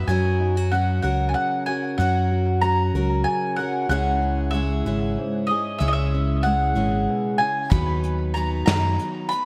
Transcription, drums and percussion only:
7.71 kick loud
7.71 closed hi-hat medium
8.04 closed hi-hat medium
8.36 closed hi-hat medium
8.67 snare medium
8.67 closed hi-hat medium
8.99 closed hi-hat soft
9.31 closed hi-hat medium

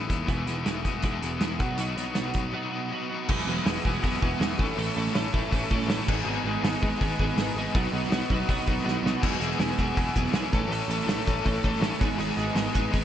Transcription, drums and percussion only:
0.10 kick medium
0.10 closed hi-hat medium
0.28 kick loud
0.28 closed hi-hat medium
0.47 snare soft
0.47 closed hi-hat medium
0.66 snare loud
0.66 closed hi-hat medium
0.85 kick medium
0.85 snare soft
0.85 closed hi-hat medium
1.02 kick loud
1.02 closed hi-hat medium
1.22 closed hi-hat medium
1.41 snare loud
1.41 closed hi-hat medium
1.60 kick loud
1.60 closed hi-hat medium
1.78 closed hi-hat medium
1.98 snare soft
1.98 closed hi-hat medium
2.15 snare loud
2.15 closed hi-hat medium
2.34 kick medium
2.34 closed hi-hat medium
3.29 kick loud
3.29 crash loud
3.57 snare soft
3.66 snare loud
3.66 open hi-hat medium
3.85 kick medium
4.04 kick medium
4.04 open hi-hat medium
4.22 kick medium
4.41 snare loud
4.41 open hi-hat medium
4.59 kick loud
4.79 open hi-hat medium
5.07 snare soft
5.15 snare loud
5.15 open hi-hat medium
5.34 kick medium
5.52 kick medium
5.52 open hi-hat medium
5.71 kick medium
5.81 snare soft
5.90 snare loud
5.90 open hi-hat medium
6.08 kick loud
6.08 crash loud
6.64 snare loud
6.64 open hi-hat medium
6.83 kick medium
7.01 kick medium
7.01 open hi-hat medium
7.19 kick medium
7.38 snare loud
7.38 open hi-hat medium
7.75 kick loud
7.75 open hi-hat medium
8.03 snare soft
8.12 snare loud
8.12 open hi-hat medium
8.30 kick medium
8.49 kick medium
8.49 open hi-hat medium
8.68 kick medium
8.78 snare soft
8.88 snare medium
9.06 snare loud
9.23 kick loud
9.23 crash loud
9.23 shaker medium
9.41 shaker loud
9.51 snare soft
9.60 snare loud
9.60 open hi-hat medium
9.60 shaker medium
9.79 kick medium
9.79 shaker loud
9.97 kick medium
9.97 open hi-hat medium
9.97 shaker medium
10.16 kick medium
10.16 shaker loud
10.25 snare soft
10.34 snare loud
10.34 open hi-hat medium
10.34 shaker medium
10.53 kick loud
10.53 shaker loud
10.72 open hi-hat medium
10.72 shaker medium
10.91 shaker loud
11.00 snare soft
11.09 snare loud
11.09 open hi-hat medium
11.09 shaker medium
11.27 kick medium
11.27 shaker loud
11.45 kick medium
11.45 open hi-hat medium
11.45 shaker medium
11.64 kick medium
11.64 shaker loud
11.74 snare soft
11.82 snare loud
11.82 open hi-hat medium
11.82 shaker medium
12.01 kick loud
12.01 shaker loud
12.19 open hi-hat medium
12.19 shaker medium
12.38 shaker loud
12.56 snare loud
12.56 open hi-hat medium
12.56 shaker medium
12.75 kick medium
12.75 shaker loud
12.94 kick medium
12.94 open hi-hat medium
12.94 shaker medium

